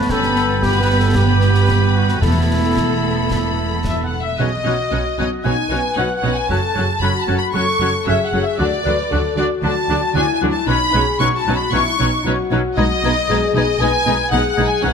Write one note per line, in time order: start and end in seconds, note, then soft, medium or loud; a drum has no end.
0.00 0.10 B3 soft
0.00 2.20 B3 medium
0.00 0.10 B4 medium
0.00 0.13 B4 medium
0.00 0.12 A5 medium
0.00 2.18 B5 medium
0.09 2.18 G1 soft
0.09 2.18 G2 soft
0.09 2.19 G3 medium
0.09 0.59 B3 soft
0.09 0.36 C#4 soft
0.09 0.62 A4 medium
0.09 0.65 A4 medium
0.09 0.59 B4 soft
0.09 2.21 G5 soft
0.09 0.59 B5 soft
0.09 concert bass drum medium
0.09 snare medium
0.23 snare soft
0.36 2.19 B3 soft
0.36 snare soft
0.63 1.14 B3 soft
0.63 0.80 G4 medium
0.63 0.82 G4 medium
0.63 1.14 B4 soft
0.63 1.14 B5 soft
0.63 concert bass drum medium
0.63 snare soft
0.80 1.00 B4 soft
0.80 0.89 B4 medium
0.98 1.17 A4 soft
0.98 1.15 A4 medium
1.15 2.20 B3 soft
1.15 1.95 G4 medium
1.15 1.94 G4 medium
1.15 2.20 B4 soft
1.15 2.20 B5 soft
1.15 concert bass drum medium
1.15 snare medium
1.41 snare soft
1.55 snare soft
1.69 concert bass drum medium
1.69 snare medium
1.95 2.07 F#4 soft
1.95 2.22 F#4 soft
2.09 snare soft
2.21 4.15 E1 soft
2.21 4.15 E2 soft
2.21 3.00 E2 medium
2.21 4.08 A3 soft
2.21 4.12 A3 soft
2.21 4.08 B3 soft
2.21 4.15 B3 soft
2.21 3.82 E4 medium
2.21 4.09 E4 soft
2.21 4.19 A4 soft
2.21 4.08 A5 soft
2.21 3.82 B5 soft
2.21 4.09 B5 soft
2.21 concert bass drum medium
2.21 snare soft
2.77 concert bass drum soft
2.77 snare medium
3.31 concert bass drum medium
3.31 snare medium
3.84 4.02 E5 medium
3.84 4.03 E5 soft
3.84 concert bass drum medium
3.84 snare soft
4.04 4.12 F#5 soft
4.04 4.22 F#5 soft
4.22 4.30 E5 soft
4.22 4.40 E5 soft
4.38 4.47 B1 soft
4.38 4.47 B2 soft
4.38 4.47 C#4 soft
4.38 4.47 D#4 soft
4.38 4.46 F#4 soft
4.38 4.52 F#4 soft
4.38 4.51 G#4 medium
4.38 4.47 B4 soft
4.38 4.51 C#5 soft
4.38 5.18 D#5 medium
4.38 5.17 D#5 medium
4.38 4.44 F#6 soft
4.64 4.73 B1 soft
4.64 4.73 B2 soft
4.64 4.73 C#4 soft
4.64 4.73 D#4 soft
4.64 5.43 F#4 soft
4.64 4.74 F#4 soft
4.64 4.79 F#4 soft
4.64 4.74 B4 soft
4.64 4.78 C#5 soft
4.64 4.72 F#6 soft
4.91 5.00 B1 soft
4.91 5.00 B2 soft
4.91 4.99 C#4 soft
4.91 5.00 D#4 soft
4.91 5.00 F#4 soft
4.91 5.05 F#4 soft
4.91 4.99 B4 soft
4.91 5.04 C#5 soft
4.91 4.98 F#6 soft
5.18 5.27 B1 soft
5.18 5.27 B2 soft
5.18 5.26 C#4 soft
5.18 5.27 D#4 soft
5.18 5.26 F#4 soft
5.18 5.30 F#4 soft
5.18 5.26 B4 soft
5.18 5.31 C#5 soft
5.18 5.44 D#5 soft
5.18 5.28 D#5 soft
5.18 5.24 F#6 soft
5.44 5.54 B1 soft
5.44 5.54 B2 soft
5.44 5.53 C#4 soft
5.44 5.71 D#4 soft
5.44 5.53 D#4 soft
5.44 5.52 F#4 soft
5.44 5.57 F#4 soft
5.44 5.52 B4 soft
5.44 5.57 C#5 soft
5.44 5.98 G#5 medium
5.44 5.97 G#5 medium
5.44 5.50 F#6 soft
5.70 5.78 B1 soft
5.70 5.80 B2 soft
5.70 5.79 C#4 soft
5.70 5.78 D#4 soft
5.70 5.82 F#4 soft
5.70 5.80 F#4 soft
5.70 6.50 B4 medium
5.70 5.80 B4 soft
5.70 5.83 C#5 soft
5.70 5.77 F#6 soft
5.96 6.04 B1 soft
5.96 6.05 B2 soft
5.96 6.04 C#4 soft
5.96 6.04 D#4 soft
5.96 6.09 F#4 soft
5.96 6.07 F#4 soft
5.96 6.07 B4 soft
5.96 6.09 C#5 soft
5.96 6.15 F#5 medium
5.96 6.15 F#5 soft
5.96 6.03 F#6 soft
6.16 6.33 F#5 soft
6.16 6.33 F#5 medium
6.22 6.32 B1 soft
6.22 6.31 B2 soft
6.22 6.32 C#4 soft
6.22 6.31 D#4 soft
6.22 6.36 F#4 soft
6.22 6.34 C#5 soft
6.22 6.30 F#6 soft
6.26 6.34 F#4 soft
6.26 6.34 B4 soft
6.33 6.51 G#5 medium
6.49 6.58 F#1 soft
6.49 6.57 F#2 soft
6.49 6.58 F#3 soft
6.49 6.58 C#4 soft
6.49 6.62 F#4 soft
6.49 6.60 F#4 soft
6.49 6.76 A4 soft
6.49 6.60 A4 soft
6.49 6.61 C#5 soft
6.49 7.01 A5 medium
6.49 7.02 A5 medium
6.49 6.57 F#6 soft
6.74 6.84 F#1 soft
6.74 6.84 F#2 soft
6.74 6.84 F#3 soft
6.74 6.84 C#4 soft
6.74 6.86 F#4 soft
6.74 7.02 G#4 soft
6.74 6.86 A4 soft
6.74 6.86 C#5 soft
6.74 6.82 F#6 soft
6.79 6.90 F#4 soft
7.01 7.09 F#1 soft
7.01 7.09 F#2 soft
7.01 7.11 F#3 soft
7.01 7.10 C#4 soft
7.01 7.10 F#4 soft
7.01 7.14 F#4 soft
7.01 7.54 F#4 soft
7.01 7.11 A4 soft
7.01 7.13 C#5 soft
7.01 7.20 B5 medium
7.01 7.20 B5 soft
7.01 7.08 F#6 soft
7.20 7.38 A5 soft
7.20 7.38 A5 medium
7.28 7.36 F#1 soft
7.28 7.36 F#2 soft
7.28 7.36 F#3 soft
7.28 7.36 C#4 soft
7.28 7.41 F#4 soft
7.28 7.38 F#4 soft
7.28 7.37 A4 soft
7.28 7.40 C#5 soft
7.28 7.34 F#6 soft
7.38 7.55 B5 soft
7.38 7.45 B5 medium
7.53 7.62 F#1 soft
7.53 7.62 F#2 soft
7.53 7.62 F#3 soft
7.53 7.63 C#4 soft
7.53 7.66 F#4 soft
7.53 7.62 F#4 soft
7.53 8.07 A4 medium
7.53 7.62 A4 soft
7.53 7.68 C#5 soft
7.53 8.05 C#6 medium
7.53 7.92 C#6 medium
7.53 7.61 F#6 soft
7.80 7.89 F#1 soft
7.80 7.88 F#2 soft
7.80 7.88 F#3 soft
7.80 7.89 C#4 soft
7.80 7.89 F#4 soft
7.80 7.93 F#4 soft
7.80 7.88 A4 soft
7.80 7.93 C#5 soft
7.80 7.87 F#6 soft
8.06 8.16 F#1 soft
8.06 8.15 F#2 soft
8.06 8.14 F#3 soft
8.06 8.14 C#4 soft
8.06 8.16 F#4 soft
8.06 8.21 F#4 soft
8.06 8.60 G#4 soft
8.06 8.16 A4 soft
8.06 8.20 C#5 soft
8.06 8.24 E5 medium
8.06 8.15 E5 medium
8.06 8.13 F#6 soft
8.25 8.43 F#5 medium
8.25 8.42 F#5 soft
8.33 8.41 F#1 soft
8.33 8.41 F#2 soft
8.33 8.42 F#3 soft
8.33 8.42 C#4 soft
8.33 8.46 F#4 soft
8.33 8.43 F#4 soft
8.33 8.42 A4 soft
8.33 8.46 C#5 soft
8.33 8.39 F#6 soft
8.42 8.60 E5 medium
8.42 8.60 E5 soft
8.58 8.68 D2 soft
8.58 8.67 D3 soft
8.58 8.68 F#3 soft
8.58 8.67 D4 soft
8.58 8.85 F#4 soft
8.58 8.71 F#4 soft
8.58 8.68 F#4 soft
8.58 8.69 A4 soft
8.58 8.71 D5 soft
8.58 9.36 D5 medium
8.58 9.37 D5 soft
8.58 8.65 F#6 soft
8.84 8.94 D2 soft
8.84 8.93 D3 soft
8.84 8.94 F#3 soft
8.84 8.94 D4 soft
8.84 8.98 F#4 soft
8.84 8.94 F#4 soft
8.84 8.95 A4 soft
8.84 9.10 B4 medium
8.84 8.98 D5 soft
8.84 8.91 F#6 soft
9.09 9.20 D2 soft
9.09 9.19 D3 soft
9.09 9.20 F#3 soft
9.09 9.19 D4 soft
9.09 9.22 F#4 soft
9.09 9.37 A4 soft
9.09 9.21 A4 soft
9.09 9.24 D5 soft
9.09 9.18 F#6 soft
9.14 9.22 F#4 soft
9.35 9.46 D2 soft
9.35 9.45 D3 soft
9.35 9.46 F#3 soft
9.35 9.46 D4 soft
9.35 9.48 F#4 soft
9.35 10.15 F#4 medium
9.35 9.47 F#4 soft
9.35 9.47 A4 soft
9.35 9.45 D5 medium
9.35 9.50 D5 medium
9.35 9.50 D5 soft
9.35 9.44 F#6 soft
9.63 9.72 D2 soft
9.63 9.71 D3 medium
9.63 9.71 F#3 soft
9.63 9.71 D4 soft
9.63 9.75 F#4 soft
9.63 9.74 F#4 soft
9.63 9.73 A4 soft
9.63 9.75 D5 soft
9.63 10.15 A5 medium
9.63 9.70 F#6 soft
9.88 9.97 D2 soft
9.88 9.97 D3 soft
9.88 9.97 F#3 soft
9.88 9.98 D4 soft
9.88 10.00 F#4 soft
9.88 9.99 F#4 soft
9.88 9.98 A4 soft
9.88 10.02 D5 soft
9.88 9.96 F#6 soft
10.15 10.24 D2 medium
10.15 10.23 D3 medium
10.15 10.24 F#3 soft
10.15 10.24 D4 soft
10.15 10.67 E4 medium
10.15 10.27 F#4 soft
10.15 10.24 F#4 soft
10.15 10.24 A4 soft
10.15 10.28 D5 soft
10.15 10.33 G#5 medium
10.15 10.21 F#6 soft
10.34 10.51 G#5 soft
10.34 10.41 G#5 medium
10.41 10.51 D2 soft
10.41 10.49 D3 medium
10.41 10.51 F#3 soft
10.41 10.51 D4 soft
10.41 10.53 F#4 soft
10.41 10.50 F#4 soft
10.41 10.49 A4 soft
10.41 10.54 D5 soft
10.41 10.47 F#6 soft
10.51 10.68 A5 medium
10.65 10.76 B1 medium
10.65 10.76 B2 medium
10.65 10.77 F#3 soft
10.65 10.77 C#4 soft
10.65 10.78 D#4 medium
10.65 10.75 D#4 soft
10.65 10.94 D#4 medium
10.65 10.75 B4 soft
10.65 10.80 C#5 soft
10.65 11.20 B5 medium
10.65 10.74 F#6 soft
10.92 11.02 B1 medium
10.92 11.02 B2 medium
10.92 11.03 F#3 soft
10.92 11.04 C#4 soft
10.92 11.00 D#4 soft
10.92 11.06 D#4 soft
10.92 11.20 G#4 medium
10.92 11.00 B4 soft
10.92 11.06 C#5 soft
10.92 10.99 F#6 soft
11.18 11.29 B1 medium
11.18 11.28 B2 medium
11.18 11.28 F#3 soft
11.18 11.29 C#4 soft
11.18 11.31 D#4 soft
11.18 11.28 D#4 soft
11.18 11.73 F#4 medium
11.18 11.28 B4 soft
11.18 11.33 C#5 soft
11.18 11.27 C#6 medium
11.18 11.38 C#6 medium
11.18 11.26 F#6 soft
11.37 11.54 A5 medium
11.37 11.55 A5 medium
11.47 11.55 B1 medium
11.47 11.55 B2 medium
11.47 11.55 F#3 soft
11.47 11.56 C#4 soft
11.47 11.59 D#4 soft
11.47 11.56 D#4 soft
11.47 11.56 B4 soft
11.47 11.59 C#5 soft
11.47 11.53 F#6 soft
11.55 11.73 B5 medium
11.72 11.81 B1 medium
11.72 11.80 B2 medium
11.72 11.81 F#3 medium
11.72 11.81 C#4 soft
11.72 11.84 D#4 soft
11.72 11.82 D#4 soft
11.72 11.99 E4 medium
11.72 11.82 B4 medium
11.72 11.85 C#5 medium
11.72 12.25 C#6 medium
11.72 12.26 C#6 medium
11.72 11.79 F#6 soft
11.97 12.08 B1 medium
11.97 12.07 B2 medium
11.97 12.09 F#3 soft
11.97 12.24 D#4 medium
11.97 12.10 D#4 soft
11.97 12.08 D#4 soft
11.97 12.11 C#5 medium
11.97 12.06 F#6 soft
12.01 12.09 C#4 soft
12.01 12.09 B4 medium
12.22 12.33 B1 medium
12.22 12.32 B2 medium
12.22 12.35 D#4 soft
12.22 13.11 F#4 medium
12.22 12.32 F#6 medium
12.26 12.34 F#3 medium
12.26 12.35 C#4 medium
12.26 12.35 D#4 soft
12.26 12.35 B4 soft
12.26 12.38 C#5 soft
12.50 12.59 B1 medium
12.50 12.58 B2 medium
12.50 12.60 F#3 medium
12.50 12.60 C#4 medium
12.50 12.58 D#4 soft
12.50 12.62 D#4 soft
12.50 12.59 B4 soft
12.50 12.63 C#5 soft
12.50 12.58 F#6 soft
12.76 12.86 B1 medium
12.76 12.84 B2 medium
12.76 12.86 G#3 medium
12.76 12.86 B3 soft
12.76 12.88 D#4 medium
12.76 12.85 D#4 soft
12.76 12.86 B4 soft
12.76 13.50 D#5 medium
12.76 12.89 D#5 medium
12.76 13.51 D#5 medium
12.76 12.83 G#6 medium
13.03 13.12 B1 medium
13.03 13.11 B2 medium
13.03 13.13 G#3 medium
13.03 13.13 B3 medium
13.03 13.16 D#4 medium
13.03 13.12 D#4 medium
13.03 13.12 B4 medium
13.03 13.15 D#5 soft
13.03 13.11 G#6 soft
13.28 13.37 B1 medium
13.28 13.37 B2 medium
13.28 13.39 G#3 medium
13.28 13.39 B3 soft
13.28 13.41 D#4 soft
13.28 13.38 D#4 medium
13.28 13.79 G#4 medium
13.28 13.38 B4 soft
13.28 13.41 D#5 medium
13.28 13.37 G#6 medium
13.54 13.62 B1 medium
13.54 13.63 B2 medium
13.54 13.65 G#3 medium
13.54 13.64 B3 medium
13.54 13.67 D#4 soft
13.54 13.64 D#4 soft
13.54 13.64 B4 soft
13.54 13.80 D#5 medium
13.54 13.67 D#5 soft
13.54 13.67 D#5 medium
13.54 13.63 G#6 medium
13.80 13.88 B1 medium
13.80 13.88 B2 medium
13.80 13.90 G#3 soft
13.80 13.90 B3 medium
13.80 13.92 D#4 medium
13.80 13.89 D#4 medium
13.80 14.32 B4 medium
13.80 13.89 B4 medium
13.80 13.92 D#5 medium
13.80 14.31 G#5 medium
13.80 14.33 G#5 medium
13.80 13.87 G#6 medium
14.06 14.14 B1 medium
14.06 14.14 B2 medium
14.06 14.15 G#3 soft
14.06 14.14 B3 soft
14.06 14.18 D#4 soft
14.06 14.17 D#4 medium
14.06 14.17 B4 medium
14.06 14.18 D#5 medium
14.06 14.14 G#6 medium
14.31 14.41 B1 medium
14.31 14.40 B2 medium
14.31 14.41 G#3 medium
14.31 14.41 B3 medium
14.31 14.43 D#4 medium
14.31 14.82 G#4 medium
14.31 14.43 D#5 soft
14.31 14.49 F#5 medium
14.31 14.39 G#6 soft
14.36 14.44 D#4 medium
14.36 14.44 B4 soft
14.50 14.66 F#5 medium
14.50 14.67 F#5 medium
14.57 14.66 B1 medium
14.57 14.66 B2 medium
14.57 14.65 G#3 medium
14.57 14.66 B3 medium
14.57 14.70 D#4 medium
14.57 14.68 D#4 medium
14.57 14.68 B4 medium
14.57 14.69 D#5 medium
14.57 14.64 G#6 medium
14.67 14.84 G#5 medium
14.67 14.75 G#5 medium
14.82 14.93 B1 medium
14.82 14.93 B2 medium
14.82 14.90 F#3 medium
14.82 14.90 C#4 medium
14.82 14.93 D#4 medium
14.82 14.93 B4 medium
14.82 14.93 C#5 medium
14.82 14.93 F#5 medium
14.82 14.90 F#6 medium
14.86 14.93 D#4 soft
14.86 14.93 F#4 medium